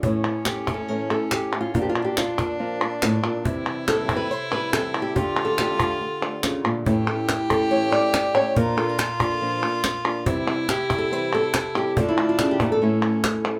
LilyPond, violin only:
\new Staff \with { instrumentName = "Violin" } { \time 4/4 \tempo 4 = 141 cis'1 | d'1 | e'1 | f'2.~ f'8 r8 |
g'1 | f'1 | e'1 | d'2 cis'4. r8 | }